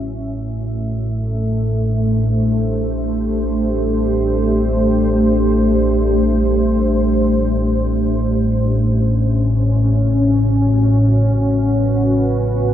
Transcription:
Already playing: synth drone A1 A2, ambient pad E5
0.06 ambient pad A3
0.67 ambient pad D4
1.02 ambient pad C5
1.20 ambient pad G4
8.46 ambient pad C#4
9.73 ambient pad F#4
11.02 ambient pad B4

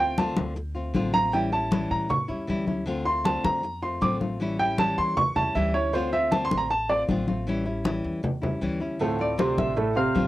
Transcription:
Already playing: upright bass D2
0.00 nylon-string guitar A3 C4 F4, grand piano G5
0.18 nylon-string guitar D3 A3 C4 F4, grand piano A5, high conga
0.37 upright bass D2, high conga
0.56 muted nylon-string guitar stroke, high conga
0.75 nylon-string guitar A3 C4 F4, high conga
0.94 upright bass A1, nylon-string guitar D3 A3 C4 F4, high conga
1.13 nylon-string guitar A3 C4 F4, grand piano A#5, high conga
1.32 nylon-string guitar E3 G3 C#4 E4, grand piano G5, high conga
1.52 nylon-string guitar G3 C#4 E4, grand piano A5, high conga
1.71 nylon-string guitar E3 G3 C#4 E4, high conga
1.91 upright bass A2, grand piano A#5, high conga
2.09 grand piano C#6, muted nylon-string guitar stroke, high conga, low conga
2.28 upright bass E2, nylon-string guitar G3 C#4 E4, high conga
2.47 upright bass D2, nylon-string guitar E3 G3 C#4 E4, high conga
2.67 nylon-string guitar G3 C#4 E4, high conga
2.86 nylon-string guitar D3 A3 C4 F4, high conga
3.05 nylon-string guitar A3 C4 F4, grand piano C6, high conga
3.24 nylon-string guitar D3 A3 C4 F4, grand piano A5, high conga
3.44 upright bass F2, grand piano A#5, high conga
3.63 muted nylon-string guitar stroke, high conga
3.82 nylon-string guitar A3 C4 F4, grand piano C6, high conga
4.01 upright bass A1, nylon-string guitar D3 A3 C4 F4, grand piano D6, high conga
4.20 nylon-string guitar A3 C4 F4, high conga
4.40 nylon-string guitar E3 G3 C#4 E4, high conga
4.59 nylon-string guitar G3 C#4 E4, grand piano G5, high conga
4.78 nylon-string guitar E3 G3 C#4 E4, grand piano A5, high conga
4.98 upright bass E2, grand piano C6, high conga
5.17 grand piano C#6, muted nylon-string guitar stroke, high conga, low conga
5.35 upright bass E2, nylon-string guitar G3 C#4 E4, grand piano A5, high conga, low conga
5.55 upright bass D2, nylon-string guitar E3 G3 C#4 E4, grand piano E5, high conga
5.74 nylon-string guitar G3 C#4 E4, grand piano C#5
5.93 nylon-string guitar D3 A3 C4 F4, grand piano C5, high conga
6.12 nylon-string guitar A3 C4 F4, grand piano E5, high conga
6.32 nylon-string guitar D3 A3 C4 F4, grand piano A5, high conga
6.45 grand piano C6
6.51 upright bass A1, high conga
6.58 grand piano A#5
6.70 grand piano A5, muted nylon-string guitar stroke, high conga
6.89 nylon-string guitar A3 C4 F4, grand piano D5, high conga
7.09 upright bass A1, nylon-string guitar D3 A3 C4 F4, high conga
7.27 nylon-string guitar A3 C4 F4, high conga
7.47 nylon-string guitar E3 G3 C#4 E4, high conga
7.65 nylon-string guitar G3 C#4 E4, high conga
7.84 nylon-string guitar E3 G3 C#4 E4, high conga
8.04 upright bass E2, high conga
8.23 muted nylon-string guitar stroke, high conga, low conga
8.42 nylon-string guitar G3 C#4 E4, high conga, low conga
8.61 upright bass D2, nylon-string guitar E3 G3 C#4 E4, high conga
8.80 nylon-string guitar G3 C#4 E4
8.99 grand piano A2 A3 A4, nylon-string guitar D3 A3 C4 F4, high conga
9.19 nylon-string guitar A3 C4 F4, harp D5, high conga
9.38 grand piano C3 C4 C5, nylon-string guitar D3 A3 C4 F4, high conga
9.58 upright bass A1, harp E5, high conga
9.76 grand piano A2 A3 A4, muted nylon-string guitar stroke, high conga
9.95 grand piano C3 C4 C5, nylon-string guitar A3 C4 F4, harp F5, high conga
10.15 upright bass A1, nylon-string guitar D3 A3 C4 F4, high conga

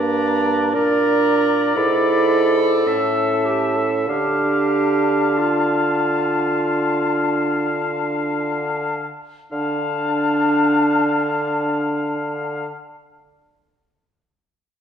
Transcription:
Already playing: bassoon G2, french horn A#3, clarinet D4, oboe D5, flute A#5
0.73 bassoon A#2, french horn D4, clarinet A#4, oboe D5, flute A#5
1.75 bassoon G#2, french horn E4, clarinet A4, flute B5
2.86 bassoon A2, french horn C#4, oboe E5, flute A5
3.45 clarinet G4
3.76 clarinet A4
4.07 bassoon D3, french horn D4, clarinet G4, oboe F5, flute A5
5.38 clarinet F4
9.52 bassoon D3, french horn D4, clarinet D4, oboe F5, flute A5

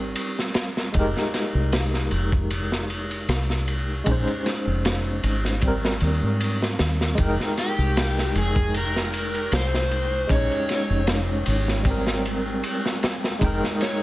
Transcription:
Already playing: fingered electric bass G#1, tine electric piano G3 C4 A#4
0.16 ride
0.39 snare
0.54 snare, ride
0.77 snare
0.92 fingered electric bass F1, tine electric piano G#3 D#4, kick, ride
0.98 tine electric piano G4 A#4
1.17 snare
1.34 snare, ride
1.54 fingered electric bass C2
1.72 snare, ride
1.94 snare
2.11 fingered electric bass F1, ride
2.32 kick
2.50 ride
2.72 snare
2.90 ride
3.11 ride
3.28 fingered electric bass C2, snare, ride
3.50 snare
3.68 ride
4.04 fingered electric bass A#1, tine electric piano G#3 C#4, kick, ride
4.09 tine electric piano D#4 C5
4.27 ride
4.46 snare, ride
4.67 fingered electric bass F1
4.85 snare, ride
5.23 fingered electric bass G#1, ride
5.45 snare
5.60 tine electric piano G3 C4, kick, ride
5.68 tine electric piano A#4
5.85 snare
6.00 fingered electric bass D#2, ride
6.23 fingered electric bass G#2
6.40 ride
6.62 snare
6.79 fingered electric bass D#2, snare, ride
7.01 snare
7.15 fingered electric bass F1, tine electric piano G#3 D#4, synth texture G#3 G5, kick, ride, shaker
7.20 tine electric piano A#4 G5
7.40 snare
7.57 electric slide guitar G4, snare, ride, shaker
7.78 fingered electric bass C2, shaker
7.97 snare, ride, shaker
8.18 snare
8.35 fingered electric bass F1, electric slide guitar G#4, ride, shaker
8.56 kick, shaker
8.74 electric slide guitar A#4, ride, shaker
8.96 snare
9.13 ride, shaker
9.33 ride, shaker
9.52 fingered electric bass C2, electric slide guitar C5, snare, ride, shaker
9.74 snare
9.91 ride, shaker
10.13 shaker
10.27 fingered electric bass A#1, tine electric piano G#3 C#4, kick, ride, shaker
10.32 tine electric piano D#4 C#5, electric slide guitar C#5
10.52 ride
10.69 snare, ride, shaker
10.90 fingered electric bass F1, shaker
11.07 snare, ride, shaker
11.46 fingered electric bass G#1, ride, shaker
11.68 snare, shaker
11.83 tine electric piano G3 C4, kick, ride, shaker
11.90 tine electric piano A#4
12.07 snare
12.25 ride, shaker
12.47 shaker
12.63 ride, shaker
12.86 snare
13.02 snare, ride, shaker
13.24 snare, shaker
13.39 fingered electric bass F1, tine electric piano G#3 D#4, kick, ride, shaker
13.44 tine electric piano A#4 G5
13.64 snare
13.81 electric slide guitar C#5, snare, ride, shaker

